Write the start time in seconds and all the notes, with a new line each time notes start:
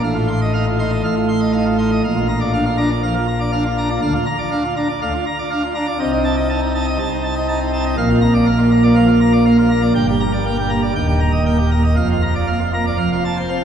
0.04 A1 A2 F5
0.15 F4
0.28 C6
0.42 D#5
0.54 D#4 F5
0.67 F4
0.79 D#4 C6
0.91 D#5
1.04 A1 A2 F5
1.17 F4
1.28 C6
1.40 D#5
1.53 D#4 F5
1.66 F4
1.78 D#4 C6
1.92 D#5
2.04 A#1 A#2 F5
2.16 F4
2.28 A#5
2.40 D5
2.53 D4 F5
2.65 F4
2.77 D4 A#5
2.89 D5
3.03 F3 F5
3.15 F4
3.28 A#5
3.40 D5
3.52 D4 F5
3.66 F4
3.78 D4 A#5
3.90 D5
4.02 D2 D3 F5
4.14 F4
4.26 A#5
4.38 D5
4.51 D4 F5
4.64 F4
4.76 D4 A#5
4.89 D5
5.01 D2 D3 F5
5.14 F4
5.26 A#5
5.39 D5
5.51 D4 F5
5.62 F4
5.75 D4 A#5
5.87 D5
5.99 C2 C3 D#5
6.12 D#4
6.24 A5
6.37 D#5
6.49 D#4 A5
6.62 D#4
6.75 D#4 A5
6.88 D#5
6.99 C2 C3 A5
7.11 D#4
7.23 A5
7.36 D#5
7.48 D#4 A5
7.60 D#4
7.73 D#4 A5
7.86 D#5
7.97 A#1 A#2 F5
8.09 F4
8.21 A#5
8.34 D5
8.46 A#3 F5
8.58 F4
8.71 A#3 A#5
8.83 D5
8.95 F3 F5
9.08 F4
9.21 A#5
9.33 D5
9.46 A#3 F5
9.58 F4
9.69 A#3 A#5
9.82 D5
9.95 G1 G2 G5
10.08 G4
10.20 A#5
10.33 D5
10.45 A#3 G5
10.58 G4
10.69 A#3 A#5
10.82 D5
10.95 D#1 D#2 G5
11.08 G4
11.20 A#5
11.32 D#5
11.45 A#3 G5
11.58 G4
11.71 A#3 A#5
11.84 D#5
11.96 F1 F2 F5
12.10 F4
12.22 A#5
12.35 D5
12.47 A#3 F5
12.60 F4
12.74 A#3 A#5
12.87 D5
12.97 F1 F2 F5
13.12 F4
13.25 A5
13.37 C5
13.49 C4 F5